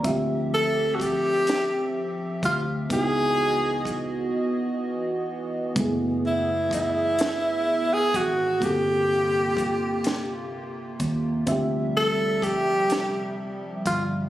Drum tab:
HH |x-xx-x|x-x---|x-xx-x|x-xx-x|
SD |---o--|------|---o--|---o--|
BD |o-o--o|o-o---|o-o--o|o-o--o|

HH |x-xx-x|
SD |---o--|
BD |o-o--o|